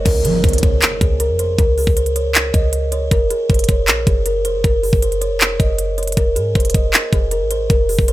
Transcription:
0.05 0.26 C#2 loud
0.05 0.21 A#4 loud
0.05 kick loud
0.05 closed hi-hat medium
0.05 crash medium
0.05 impact medium
0.25 0.43 F3 medium
0.25 0.40 G#4 medium
0.25 closed hi-hat medium
0.44 0.62 C#2 loud
0.44 0.59 C5 medium
0.44 kick loud
0.44 closed hi-hat soft
0.49 closed hi-hat medium
0.53 closed hi-hat medium
0.58 closed hi-hat medium
0.63 0.81 C#2 loud
0.63 0.99 C#5 medium
0.63 kick loud
0.63 closed hi-hat medium
0.82 clap loud
0.82 closed hi-hat medium
1.01 1.31 C#2 loud
1.01 1.16 G#4 medium
1.01 kick loud
1.01 closed hi-hat medium
1.20 1.36 A#4 medium
1.20 closed hi-hat medium
1.30 1.57 F2 loud
1.39 1.55 C5 medium
1.39 closed hi-hat medium
1.59 1.86 C#2 loud
1.59 1.74 A#4 loud
1.59 kick loud
1.59 closed hi-hat medium
1.78 1.93 G#4 medium
1.78 open hi-hat medium
1.87 2.51 C#2 loud
1.87 kick loud
1.96 2.12 C5 medium
1.96 closed hi-hat medium
2.06 closed hi-hat soft
2.16 2.52 C#5 medium
2.16 closed hi-hat medium
2.35 clap loud
2.35 closed hi-hat medium
2.54 3.09 C#2 loud
2.54 2.90 D#5 medium
2.54 kick loud
2.54 closed hi-hat medium
2.73 closed hi-hat medium
2.92 3.07 C#5 medium
2.92 closed hi-hat medium
3.11 3.30 F#1 loud
3.11 3.27 A#4 loud
3.11 kick loud
3.11 closed hi-hat medium
3.30 3.46 G#4 medium
3.30 closed hi-hat medium
3.50 3.68 F#1 loud
3.50 3.65 C5 medium
3.50 kick loud
3.50 closed hi-hat soft
3.54 closed hi-hat medium
3.59 closed hi-hat medium
3.64 closed hi-hat medium
3.68 3.89 F1 loud
3.68 4.04 C#5 medium
3.68 kick medium
3.68 closed hi-hat medium
3.88 4.06 A#1 loud
3.88 clap loud
3.88 closed hi-hat medium
4.07 4.47 F#1 loud
4.07 4.23 G#4 medium
4.07 kick loud
4.07 closed hi-hat medium
4.26 4.41 A#4 medium
4.26 closed hi-hat medium
4.45 4.56 F1 loud
4.45 4.60 C5 medium
4.45 closed hi-hat medium
4.55 4.64 F#1 loud
4.64 4.92 F#1 loud
4.64 4.79 A#4 loud
4.64 kick loud
4.64 closed hi-hat medium
4.83 4.99 G#4 medium
4.83 open hi-hat medium
4.93 5.33 F#1 loud
4.93 kick loud
5.02 5.18 C5 medium
5.02 closed hi-hat medium
5.12 closed hi-hat soft
5.21 5.57 C#5 medium
5.21 closed hi-hat medium
5.31 5.58 F1 loud
5.41 clap loud
5.41 closed hi-hat medium
5.59 6.15 F#1 loud
5.59 5.96 D#5 medium
5.59 kick medium
5.59 closed hi-hat medium
5.79 closed hi-hat medium
5.98 6.13 C#5 medium
5.98 closed hi-hat soft
6.03 closed hi-hat medium
6.08 closed hi-hat medium
6.12 closed hi-hat medium
6.17 6.38 F1 loud
6.17 6.33 A#4 loud
6.17 kick loud
6.17 closed hi-hat medium
6.36 6.54 G#2 loud
6.36 6.51 G#4 medium
6.36 closed hi-hat medium
6.55 6.74 F1 loud
6.55 6.70 C5 medium
6.55 kick loud
6.55 closed hi-hat soft
6.60 closed hi-hat medium
6.65 closed hi-hat medium
6.70 closed hi-hat medium
6.74 6.93 F1 loud
6.74 7.10 D#5 medium
6.74 kick loud
6.74 closed hi-hat medium
6.93 clap loud
6.93 closed hi-hat medium
7.13 7.43 F1 loud
7.13 7.28 G#4 medium
7.13 kick medium
7.13 closed hi-hat medium
7.31 7.47 A#4 medium
7.31 closed hi-hat medium
7.41 7.69 G#1 loud
7.51 7.66 C5 medium
7.51 closed hi-hat medium
7.70 7.97 F1 loud
7.70 7.85 A#4 loud
7.70 kick loud
7.70 closed hi-hat medium
7.89 8.04 G#4 medium
7.89 open hi-hat medium
7.99 8.13 F1 loud
7.99 kick loud
8.08 8.13 C5 medium
8.08 closed hi-hat medium

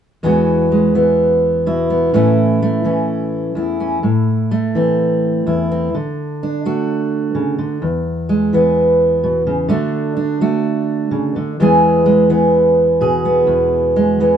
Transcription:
0.23 2.14 E2 soft
0.23 0.93 E3 soft
0.23 0.71 G#3 soft
0.23 0.94 B3 soft
0.23 1.66 F#4 soft
0.72 2.09 G#3 soft
0.95 2.09 E3 soft
0.95 1.89 B3 soft
1.66 2.09 B2 soft
1.66 2.14 E4 soft
1.90 2.14 B3 soft
2.13 3.56 A2 medium
2.13 2.83 E3 soft
2.13 2.61 A3 soft
2.13 2.84 C#4 soft
2.13 3.55 E4 medium
2.62 3.98 A3 soft
2.84 3.97 E3 soft
2.84 3.79 C#4 soft
3.55 4.03 E2 soft
3.55 5.46 E4 soft
3.80 3.98 C#4 soft
4.03 5.46 A2 medium
4.51 5.88 A3 soft
4.75 5.88 E3 soft
4.75 5.70 C4 soft
5.46 5.94 E2 soft
5.46 5.94 E4 soft
5.72 5.89 C4 soft
5.95 7.57 D3 medium
6.43 7.77 D4 soft
6.65 7.76 A3 soft
6.65 7.77 F#4 medium
7.35 7.58 C#3 soft
7.58 7.82 D3 medium
7.82 9.69 E2 medium
8.29 9.64 G#3 soft
8.53 9.64 E3 soft
8.53 9.70 B3 soft
9.24 9.46 B2 medium
9.47 9.69 C#3 soft
9.69 11.33 D3 medium
9.69 10.39 A3 soft
9.69 10.15 D4 soft
9.69 10.40 F#4 medium
10.17 11.52 D4 soft
10.41 11.52 A3 medium
10.41 11.52 F#4 medium
11.11 11.34 C#3 medium
11.36 11.58 D3 medium
11.60 13.46 E2 medium
11.60 12.28 E3 medium
11.60 12.05 G#3 soft
11.60 12.29 B3 soft
11.60 13.00 G#4 medium
12.06 13.95 G#3 medium
12.29 14.19 E3 soft
12.29 13.24 B3 soft
13.01 14.20 B2 medium
13.01 14.37 G#4 soft
13.25 14.20 B3 soft
13.47 14.37 E2 medium
13.96 14.37 G#3 soft
14.20 14.37 E3 medium
14.20 14.37 B3 medium

